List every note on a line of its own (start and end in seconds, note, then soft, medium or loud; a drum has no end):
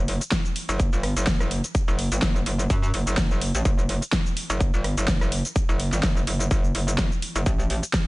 0.00 0.19 F#1 loud
0.08 open hi-hat loud
0.21 closed hi-hat medium
0.21 shaker medium
0.32 kick loud
0.32 snare loud
0.32 closed hi-hat medium
0.32 shaker medium
0.45 shaker soft
0.56 open hi-hat loud
0.69 0.91 F#1 loud
0.69 closed hi-hat medium
0.69 shaker medium
0.80 kick loud
0.80 closed hi-hat medium
0.80 shaker medium
0.93 1.14 G1 medium
0.93 shaker soft
1.03 cross-stick medium
1.03 open hi-hat loud
1.16 1.62 F#1 loud
1.16 closed hi-hat medium
1.16 shaker medium
1.27 kick loud
1.27 snare loud
1.27 closed hi-hat medium
1.27 shaker medium
1.40 cross-stick medium
1.40 shaker soft
1.51 open hi-hat loud
1.64 closed hi-hat medium
1.64 shaker medium
1.75 kick loud
1.75 closed hi-hat medium
1.75 shaker medium
1.88 2.10 F#1 loud
1.88 shaker soft
1.99 open hi-hat loud
2.12 2.21 G1 loud
2.12 closed hi-hat medium
2.12 shaker medium
2.22 2.45 F#1 loud
2.22 kick loud
2.22 snare loud
2.22 closed hi-hat medium
2.22 shaker medium
2.36 shaker soft
2.46 2.68 F#1 loud
2.46 open hi-hat loud
2.59 closed hi-hat medium
2.59 shaker medium
2.70 2.92 F#2 loud
2.70 kick loud
2.70 closed hi-hat medium
2.70 shaker medium
2.83 shaker soft
2.94 3.05 F#1 loud
2.94 open hi-hat loud
3.07 3.53 F#1 loud
3.07 closed hi-hat medium
3.07 shaker medium
3.17 kick loud
3.17 snare loud
3.17 closed hi-hat medium
3.17 shaker medium
3.31 shaker soft
3.41 open hi-hat loud
3.55 3.64 A1 loud
3.55 closed hi-hat medium
3.55 shaker medium
3.65 4.00 F#1 loud
3.65 kick loud
3.65 closed hi-hat medium
3.65 shaker medium
3.79 shaker soft
3.89 open hi-hat loud
4.02 closed hi-hat medium
4.02 shaker medium
4.13 kick loud
4.13 snare loud
4.13 closed hi-hat medium
4.13 shaker medium
4.26 shaker soft
4.37 open hi-hat loud
4.50 4.72 F#1 loud
4.50 closed hi-hat medium
4.50 shaker medium
4.61 kick loud
4.61 closed hi-hat medium
4.61 shaker medium
4.74 4.95 G1 loud
4.74 shaker soft
4.84 cross-stick medium
4.84 open hi-hat loud
4.98 5.43 F#1 loud
4.98 closed hi-hat medium
4.98 shaker medium
5.08 kick loud
5.08 snare loud
5.08 closed hi-hat medium
5.08 shaker medium
5.21 cross-stick medium
5.21 shaker soft
5.32 open hi-hat loud
5.45 closed hi-hat medium
5.45 shaker medium
5.56 kick loud
5.56 closed hi-hat medium
5.56 shaker medium
5.69 5.91 F#1 loud
5.69 shaker soft
5.80 open hi-hat loud
5.92 6.02 G1 medium
5.92 snare soft
5.92 closed hi-hat medium
5.92 shaker medium
6.03 6.25 F#1 loud
6.03 kick loud
6.03 snare loud
6.03 closed hi-hat medium
6.03 shaker medium
6.17 shaker soft
6.27 6.49 F#1 loud
6.27 open hi-hat loud
6.40 closed hi-hat medium
6.40 shaker medium
6.51 6.73 F#1 loud
6.51 kick loud
6.51 closed hi-hat medium
6.51 shaker medium
6.64 shaker soft
6.75 7.10 F#1 loud
6.75 open hi-hat loud
6.88 closed hi-hat medium
6.88 shaker medium
6.98 kick loud
6.98 snare loud
6.98 closed hi-hat medium
6.98 shaker medium
7.12 shaker soft
7.22 open hi-hat loud
7.36 7.45 F#1 loud
7.36 closed hi-hat medium
7.36 shaker medium
7.46 7.81 A1 loud
7.46 kick loud
7.46 closed hi-hat medium
7.46 shaker medium
7.60 shaker soft
7.70 open hi-hat loud
7.83 closed hi-hat medium
7.83 shaker medium
7.93 kick loud
7.93 snare loud
7.93 closed hi-hat medium
7.93 shaker medium